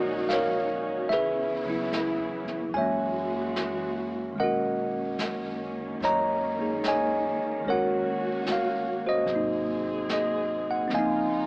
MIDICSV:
0, 0, Header, 1, 6, 480
1, 0, Start_track
1, 0, Tempo, 815217
1, 654, Time_signature, 4, 2, 24, 8
1, 6751, End_track
2, 0, Start_track
2, 0, Title_t, "Tine electric piano"
2, 0, Program_c, 0, 4
2, 0, Control_c, 0, 64, 127
2, 0, Note_on_c, 0, 51, 41
2, 0, Note_on_c, 0, 56, 37
2, 0, Note_on_c, 0, 58, 35
2, 0, Note_on_c, 0, 61, 40
2, 0, Note_on_c, 0, 63, 34
2, 0, Note_on_c, 0, 66, 45
2, 0, Note_on_c, 0, 70, 44
2, 0, Note_on_c, 0, 73, 61
2, 0, Note_on_c, 0, 74, 45
2, 0, Note_on_c, 0, 75, 58
2, 0, Note_on_c, 0, 78, 80
2, 153, Note_off_c, 0, 75, 0
2, 170, Note_on_c, 0, 77, 67
2, 189, Note_off_c, 0, 70, 0
2, 194, Note_off_c, 0, 73, 0
2, 194, Note_on_c, 0, 73, 51
2, 196, Note_on_c, 0, 70, 53
2, 639, Note_off_c, 0, 66, 0
2, 640, Note_off_c, 0, 73, 0
2, 641, Note_off_c, 0, 70, 0
2, 643, Note_on_c, 0, 76, 71
2, 646, Note_off_c, 0, 51, 0
2, 651, Note_off_c, 0, 56, 0
2, 655, Note_off_c, 0, 58, 0
2, 657, Note_off_c, 0, 61, 0
2, 660, Note_off_c, 0, 63, 0
2, 661, Control_c, 0, 64, 0
2, 662, Note_off_c, 0, 78, 0
2, 665, Note_off_c, 0, 74, 0
2, 666, Note_off_c, 0, 77, 0
2, 667, Note_on_c, 0, 68, 51
2, 667, Note_on_c, 0, 71, 54
2, 753, Control_c, 0, 64, 127
2, 974, Note_on_c, 0, 49, 40
2, 983, Note_on_c, 0, 54, 38
2, 992, Note_on_c, 0, 59, 36
2, 998, Note_on_c, 0, 64, 44
2, 1587, Note_on_c, 0, 52, 39
2, 1598, Note_off_c, 0, 68, 0
2, 1599, Note_off_c, 0, 71, 0
2, 1610, Note_off_c, 0, 49, 0
2, 1613, Note_on_c, 0, 56, 39
2, 1614, Note_on_c, 0, 80, 70
2, 1615, Note_off_c, 0, 54, 0
2, 1619, Note_off_c, 0, 59, 0
2, 1622, Note_off_c, 0, 64, 0
2, 1622, Control_c, 0, 64, 0
2, 1629, Note_on_c, 0, 73, 49
2, 1630, Note_off_c, 0, 76, 0
2, 1633, Note_on_c, 0, 58, 38
2, 1637, Note_on_c, 0, 76, 50
2, 1657, Note_on_c, 0, 61, 44
2, 1734, Control_c, 0, 64, 127
2, 2405, Note_off_c, 0, 80, 0
2, 2548, Note_on_c, 0, 51, 41
2, 2556, Note_off_c, 0, 56, 0
2, 2563, Note_off_c, 0, 73, 0
2, 2563, Note_on_c, 0, 56, 39
2, 2565, Note_off_c, 0, 52, 0
2, 2567, Note_off_c, 0, 76, 0
2, 2586, Note_off_c, 0, 61, 0
2, 2588, Note_off_c, 0, 58, 0
2, 2588, Control_c, 0, 64, 0
2, 2589, Note_on_c, 0, 78, 77
2, 2591, Note_on_c, 0, 70, 54
2, 2591, Note_on_c, 0, 75, 56
2, 2593, Note_on_c, 0, 61, 37
2, 2611, Note_on_c, 0, 66, 46
2, 2704, Control_c, 0, 64, 127
2, 3524, Note_off_c, 0, 70, 0
2, 3524, Note_off_c, 0, 75, 0
2, 3555, Note_on_c, 0, 73, 58
2, 3557, Note_on_c, 0, 75, 55
2, 3561, Note_on_c, 0, 82, 77
2, 3575, Note_off_c, 0, 78, 0
2, 3881, Note_on_c, 0, 58, 35
2, 3890, Note_on_c, 0, 63, 33
2, 3896, Note_on_c, 0, 68, 38
2, 4008, Note_off_c, 0, 82, 0
2, 4038, Note_off_c, 0, 73, 0
2, 4041, Note_off_c, 0, 75, 0
2, 4045, Note_on_c, 0, 73, 56
2, 4048, Note_on_c, 0, 75, 57
2, 4052, Note_on_c, 0, 80, 78
2, 4470, Note_off_c, 0, 51, 0
2, 4477, Note_on_c, 0, 51, 40
2, 4489, Note_off_c, 0, 73, 0
2, 4491, Note_off_c, 0, 75, 0
2, 4493, Note_off_c, 0, 56, 0
2, 4502, Note_on_c, 0, 56, 39
2, 4506, Note_off_c, 0, 58, 0
2, 4508, Note_off_c, 0, 61, 0
2, 4509, Control_c, 0, 64, 0
2, 4510, Note_off_c, 0, 63, 0
2, 4513, Note_off_c, 0, 68, 0
2, 4517, Note_off_c, 0, 66, 0
2, 4519, Note_on_c, 0, 61, 39
2, 4523, Note_on_c, 0, 73, 55
2, 4526, Note_on_c, 0, 70, 54
2, 4530, Note_off_c, 0, 80, 0
2, 4535, Note_on_c, 0, 78, 76
2, 4546, Note_on_c, 0, 66, 46
2, 4621, Control_c, 0, 64, 127
2, 5010, Note_off_c, 0, 78, 0
2, 5018, Note_on_c, 0, 77, 71
2, 5307, Note_off_c, 0, 77, 0
2, 5333, Note_off_c, 0, 66, 0
2, 5337, Note_on_c, 0, 72, 49
2, 5340, Note_on_c, 0, 66, 49
2, 5351, Note_on_c, 0, 75, 71
2, 5445, Note_on_c, 0, 48, 43
2, 5446, Note_off_c, 0, 73, 0
2, 5447, Note_off_c, 0, 51, 0
2, 5448, Note_off_c, 0, 70, 0
2, 5459, Note_off_c, 0, 56, 0
2, 5465, Note_on_c, 0, 54, 38
2, 5466, Control_c, 0, 64, 0
2, 5468, Note_off_c, 0, 61, 0
2, 5494, Note_on_c, 0, 58, 39
2, 5508, Note_on_c, 0, 63, 45
2, 5581, Control_c, 0, 64, 127
2, 5958, Note_off_c, 0, 75, 0
2, 5965, Note_on_c, 0, 75, 69
2, 6258, Note_off_c, 0, 72, 0
2, 6259, Note_off_c, 0, 66, 0
2, 6290, Note_off_c, 0, 75, 0
2, 6304, Note_on_c, 0, 78, 65
2, 6404, Note_on_c, 0, 60, 46
2, 6410, Note_off_c, 0, 48, 0
2, 6420, Note_off_c, 0, 54, 0
2, 6425, Control_c, 0, 64, 0
2, 6426, Note_off_c, 0, 78, 0
2, 6428, Note_on_c, 0, 53, 45
2, 6434, Note_off_c, 0, 58, 0
2, 6441, Note_off_c, 0, 63, 0
2, 6441, Note_on_c, 0, 77, 51
2, 6442, Note_on_c, 0, 75, 51
2, 6446, Note_on_c, 0, 80, 74
2, 6447, Note_on_c, 0, 58, 45
2, 6468, Note_on_c, 0, 63, 52
2, 6513, Control_c, 0, 64, 127
2, 6751, Note_off_c, 0, 53, 0
2, 6751, Note_off_c, 0, 58, 0
2, 6751, Note_off_c, 0, 60, 0
2, 6751, Note_off_c, 0, 63, 0
2, 6751, Note_off_c, 0, 75, 0
2, 6751, Note_off_c, 0, 77, 0
2, 6751, Note_off_c, 0, 80, 0
2, 6751, End_track
3, 0, Start_track
3, 0, Title_t, "String section"
3, 0, Program_c, 1, 48
3, 0, Note_on_c, 1, 54, 62
3, 0, Note_on_c, 1, 61, 59
3, 0, Note_on_c, 1, 63, 55
3, 0, Note_on_c, 1, 66, 73
3, 630, Note_off_c, 1, 54, 0
3, 630, Note_off_c, 1, 66, 0
3, 633, Note_off_c, 1, 63, 0
3, 648, Note_on_c, 1, 52, 61
3, 649, Note_on_c, 1, 64, 67
3, 652, Note_on_c, 1, 59, 53
3, 1589, Note_off_c, 1, 61, 0
3, 1603, Note_off_c, 1, 52, 0
3, 1604, Note_off_c, 1, 64, 0
3, 1605, Note_off_c, 1, 59, 0
3, 1623, Note_on_c, 1, 56, 53
3, 1624, Note_on_c, 1, 58, 55
3, 1624, Note_on_c, 1, 66, 63
3, 1628, Note_on_c, 1, 52, 58
3, 2573, Note_off_c, 1, 56, 0
3, 2574, Note_off_c, 1, 66, 0
3, 2576, Note_off_c, 1, 52, 0
3, 2578, Note_on_c, 1, 51, 58
3, 2578, Note_on_c, 1, 61, 53
3, 4481, Note_off_c, 1, 61, 0
3, 4510, Note_on_c, 1, 66, 70
3, 4519, Note_on_c, 1, 61, 58
3, 5435, Note_off_c, 1, 51, 0
3, 5454, Note_off_c, 1, 66, 0
3, 5458, Note_off_c, 1, 61, 0
3, 5477, Note_on_c, 1, 60, 54
3, 5479, Note_on_c, 1, 68, 63
3, 6416, Note_off_c, 1, 60, 0
3, 6417, Note_off_c, 1, 68, 0
3, 6426, Note_on_c, 1, 65, 71
3, 6428, Note_on_c, 1, 49, 59
3, 6442, Note_on_c, 1, 63, 66
3, 6751, Note_off_c, 1, 49, 0
3, 6751, Note_off_c, 1, 58, 0
3, 6751, Note_off_c, 1, 63, 0
3, 6751, Note_off_c, 1, 65, 0
3, 6751, End_track
4, 0, Start_track
4, 0, Title_t, "Upright bass"
4, 0, Program_c, 2, 32
4, 0, Note_on_c, 2, 34, 74
4, 625, Note_off_c, 2, 34, 0
4, 647, Note_on_c, 2, 37, 64
4, 1267, Note_off_c, 2, 37, 0
4, 1288, Note_on_c, 2, 40, 48
4, 1439, Note_off_c, 2, 40, 0
4, 1442, Note_on_c, 2, 43, 57
4, 1597, Note_off_c, 2, 43, 0
4, 1614, Note_on_c, 2, 42, 76
4, 2555, Note_off_c, 2, 42, 0
4, 2579, Note_on_c, 2, 35, 64
4, 3037, Note_off_c, 2, 35, 0
4, 3059, Note_on_c, 2, 42, 62
4, 3517, Note_off_c, 2, 42, 0
4, 3535, Note_on_c, 2, 42, 71
4, 4325, Note_off_c, 2, 42, 0
4, 4505, Note_on_c, 2, 39, 65
4, 4958, Note_off_c, 2, 39, 0
4, 4982, Note_on_c, 2, 31, 66
4, 5437, Note_off_c, 2, 31, 0
4, 5454, Note_on_c, 2, 32, 73
4, 6391, Note_off_c, 2, 32, 0
4, 6413, Note_on_c, 2, 37, 68
4, 6751, Note_off_c, 2, 37, 0
4, 6751, End_track
5, 0, Start_track
5, 0, Title_t, "Muted upright bass strokes"
5, 4351, Note_on_c, 9, 29, 30
5, 4410, Note_off_c, 9, 29, 0
5, 6751, End_track
6, 0, Start_track
6, 0, Title_t, "Drums"
6, 173, Note_on_c, 9, 38, 39
6, 173, Note_on_c, 9, 44, 42
6, 232, Note_off_c, 9, 38, 0
6, 232, Note_off_c, 9, 44, 0
6, 654, Note_on_c, 9, 25, 32
6, 654, Note_on_c, 9, 38, 23
6, 713, Note_off_c, 9, 38, 0
6, 1134, Note_on_c, 9, 38, 38
6, 1134, Note_on_c, 9, 44, 40
6, 1193, Note_off_c, 9, 38, 0
6, 1193, Note_off_c, 9, 44, 0
6, 1458, Note_on_c, 9, 38, 22
6, 1517, Note_off_c, 9, 38, 0
6, 1618, Note_off_c, 9, 25, 0
6, 1618, Note_on_c, 9, 25, 31
6, 2096, Note_on_c, 9, 38, 37
6, 2096, Note_on_c, 9, 44, 43
6, 2154, Note_off_c, 9, 38, 0
6, 2154, Note_off_c, 9, 44, 0
6, 2577, Note_off_c, 9, 25, 0
6, 2577, Note_on_c, 9, 25, 31
6, 3055, Note_on_c, 9, 38, 39
6, 3055, Note_on_c, 9, 44, 50
6, 3114, Note_off_c, 9, 38, 0
6, 3114, Note_off_c, 9, 44, 0
6, 3545, Note_off_c, 9, 25, 0
6, 3545, Note_on_c, 9, 25, 30
6, 3545, Note_on_c, 9, 38, 26
6, 3604, Note_off_c, 9, 38, 0
6, 4025, Note_on_c, 9, 38, 38
6, 4025, Note_on_c, 9, 44, 52
6, 4084, Note_off_c, 9, 38, 0
6, 4084, Note_off_c, 9, 44, 0
6, 4502, Note_off_c, 9, 25, 0
6, 4502, Note_on_c, 9, 25, 28
6, 4983, Note_on_c, 9, 38, 40
6, 4983, Note_on_c, 9, 44, 47
6, 5042, Note_off_c, 9, 38, 0
6, 5042, Note_off_c, 9, 44, 0
6, 5460, Note_off_c, 9, 25, 0
6, 5460, Note_on_c, 9, 25, 27
6, 5460, Note_on_c, 9, 38, 25
6, 5519, Note_off_c, 9, 38, 0
6, 5942, Note_on_c, 9, 38, 41
6, 5942, Note_on_c, 9, 44, 47
6, 6000, Note_off_c, 9, 38, 0
6, 6000, Note_off_c, 9, 44, 0
6, 6417, Note_off_c, 9, 25, 0
6, 6417, Note_on_c, 9, 25, 31
6, 6417, Note_on_c, 9, 38, 24
6, 6476, Note_off_c, 9, 38, 0
6, 6751, Note_off_c, 9, 25, 0
6, 6751, End_track
0, 0, End_of_file